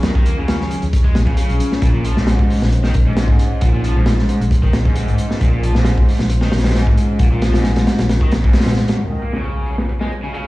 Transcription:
0.00 0.35 D#2 medium
0.00 0.10 D#3 loud
0.00 1.79 F#3 medium
0.00 8.95 C#4 medium
0.00 1.79 F4 medium
0.00 1.79 G#4 medium
0.00 snare loud
0.00 closed hi-hat medium
0.15 0.25 D#3 medium
0.15 kick medium
0.26 0.36 A#3 medium
0.26 closed hi-hat medium
0.38 0.68 D#2 medium
0.38 0.81 C#3 medium
0.48 snare loud
0.48 closed hi-hat medium
0.61 snare soft
0.71 closed hi-hat medium
0.82 1.13 D#2 medium
0.82 closed hi-hat soft
0.93 kick loud
0.93 closed hi-hat medium
1.04 1.14 G#3 medium
1.04 kick medium
1.15 1.26 A#1 medium
1.15 snare loud
1.15 closed hi-hat medium
1.27 1.37 C#3 medium
1.27 kick medium
1.37 1.81 C#3 medium
1.37 closed hi-hat medium
1.50 1.59 A#1 medium
1.50 closed hi-hat soft
1.60 closed hi-hat medium
1.72 snare soft
1.82 2.14 A#1 medium
1.82 1.89 A#2 loud
1.82 8.95 G#3 medium
1.82 5.37 D#4 medium
1.82 8.95 C5 medium
1.82 kick loud
1.82 closed hi-hat medium
1.94 2.04 A#2 medium
2.04 2.16 F3 medium
2.04 closed hi-hat medium
2.17 2.47 A#1 medium
2.17 2.61 G#2 medium
2.17 snare medium
2.27 snare loud
2.27 closed hi-hat medium
2.39 kick medium
2.50 open hi-hat medium
2.62 2.92 A#1 medium
2.62 snare medium
2.72 closed hi-hat medium
2.84 2.93 D#3 medium
2.84 snare soft
2.94 3.26 A#1 loud
2.94 kick medium
2.94 closed hi-hat medium
3.07 3.16 G#2 medium
3.17 3.61 G#2 medium
3.17 snare loud
3.17 closed hi-hat medium
3.28 3.37 G#1 medium
3.28 kick medium
3.39 closed hi-hat medium
3.61 3.93 A#1 medium
3.61 3.68 A#2 loud
3.61 kick loud
3.61 closed hi-hat medium
3.74 3.84 A#2 medium
3.84 3.95 F3 medium
3.84 closed hi-hat medium
3.96 4.26 A#1 medium
3.96 4.40 G#2 medium
4.06 snare loud
4.06 closed hi-hat medium
4.19 snare soft
4.29 closed hi-hat medium
4.41 4.71 A#1 medium
4.41 closed hi-hat soft
4.51 kick loud
4.51 closed hi-hat medium
4.63 4.72 D#3 medium
4.63 kick loud
4.73 5.05 A#1 medium
4.73 snare loud
4.73 closed hi-hat medium
4.85 4.95 G#2 medium
4.85 kick loud
4.96 5.40 G#2 medium
4.96 closed hi-hat medium
5.08 5.17 G#1 medium
5.08 closed hi-hat soft
5.18 closed hi-hat medium
5.31 snare soft
5.40 5.72 A#1 medium
5.40 5.47 A#2 loud
5.40 8.95 F4 medium
5.40 kick loud
5.40 closed hi-hat medium
5.53 5.63 A#2 medium
5.63 5.74 F3 medium
5.63 closed hi-hat medium
5.75 6.05 A#1 medium
5.75 6.19 G#2 medium
5.75 snare medium
5.85 snare loud
5.85 closed hi-hat medium
5.98 kick medium
6.09 open hi-hat medium
6.19 6.50 A#1 medium
6.19 snare medium
6.30 closed hi-hat loud
6.41 6.51 D#3 medium
6.41 snare soft
6.52 6.84 A#1 loud
6.52 snare medium
6.52 closed hi-hat medium
6.58 snare medium
6.58 closed hi-hat medium
6.64 6.74 G#2 medium
6.64 snare medium
6.64 closed hi-hat medium
6.69 snare loud
6.69 closed hi-hat medium
6.75 7.19 G#2 medium
6.75 snare loud
6.75 closed hi-hat medium
6.87 6.96 G#1 medium
6.87 kick medium
6.97 closed hi-hat medium
7.19 7.51 A#1 medium
7.19 7.26 A#2 medium
7.19 kick loud
7.19 closed hi-hat medium
7.32 7.42 A#2 medium
7.42 7.53 F3 medium
7.42 snare loud
7.42 closed hi-hat medium
7.54 7.84 A#1 medium
7.54 7.98 G#2 medium
7.54 snare medium
7.54 closed hi-hat medium
7.64 snare medium
7.64 closed hi-hat medium
7.76 snare loud
7.76 closed hi-hat medium
7.87 snare loud
7.87 closed hi-hat medium
7.98 8.29 A#1 medium
7.98 snare loud
7.98 closed hi-hat medium
8.09 snare loud
8.09 closed hi-hat medium
8.21 8.31 D#3 medium
8.21 kick medium
8.31 8.42 A#1 medium
8.31 snare loud
8.31 closed hi-hat medium
8.44 8.53 G#2 medium
8.44 kick loud
8.53 8.98 G#2 medium
8.53 snare medium
8.53 closed hi-hat medium
8.60 snare medium
8.60 closed hi-hat medium
8.66 8.96 A#2 medium
8.66 snare medium
8.66 closed hi-hat medium
8.71 snare medium
8.71 closed hi-hat medium
8.77 snare loud
8.77 closed hi-hat medium
8.88 snare loud
8.88 closed hi-hat medium
8.99 9.05 D#3 medium
8.99 10.47 G#3 medium
8.99 10.47 D#4 medium
8.99 10.47 F4 medium
8.99 10.47 F#4 medium
8.99 10.47 C#5 medium
8.99 closed hi-hat medium
8.99 impact medium
9.11 9.21 D#3 medium
9.21 9.32 A#3 medium
9.21 closed hi-hat medium
9.33 9.77 C#3 medium
9.33 snare soft
9.44 closed hi-hat medium
9.66 open hi-hat medium
9.78 snare medium
9.89 closed hi-hat medium
10.00 10.10 G#3 medium
10.00 snare soft
10.11 closed hi-hat medium
10.23 10.32 C#3 medium
10.33 10.47 C#3 medium
10.33 closed hi-hat medium

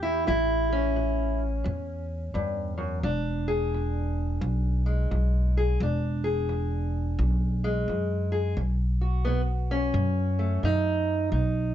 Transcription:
0.00 0.24 E2 medium
0.00 0.23 A2 medium
0.00 0.26 E4 medium
0.00 0.71 G4 medium
0.27 1.62 A1 loud
0.27 0.91 A2 medium
0.27 1.40 E4 medium
0.72 2.79 C#4 medium
0.96 1.60 A2 medium
1.64 2.31 E2 medium
1.64 2.29 A2 medium
2.34 3.00 E2 medium
2.34 2.77 G2 medium
2.77 3.03 F#2 medium
3.03 4.38 E1 loud
3.03 3.68 E2 medium
3.03 5.77 D4 medium
3.48 5.55 G#4 medium
3.74 4.38 E2 medium
4.41 5.07 B1 loud
4.41 5.06 E2 medium
4.86 5.77 G#3 medium
5.11 5.76 B1 medium
5.11 5.75 E2 medium
5.57 5.78 G#4 medium
5.80 7.14 E1 loud
5.80 6.45 E2 medium
5.80 8.55 D4 medium
6.24 8.31 G#4 medium
6.49 7.13 E2 medium
7.19 7.83 B1 loud
7.19 7.83 E2 medium
7.64 8.54 G#3 medium
7.88 8.52 E2 medium
7.88 8.53 F#2 medium
8.32 8.54 G#4 medium
8.57 9.91 B1 medium
8.57 9.21 B2 medium
9.01 11.30 F#4 soft
9.25 9.90 B2 medium
9.25 9.41 B3 medium
9.71 10.64 C#4 medium
9.94 10.59 F#2 loud
9.94 10.58 B2 medium
10.39 11.30 A3 soft
10.63 11.28 F#2 medium
10.63 11.27 B2 medium
10.63 11.32 D#4 medium
11.32 11.74 B1 medium
11.32 11.74 B2 medium
11.32 11.74 D#4 soft

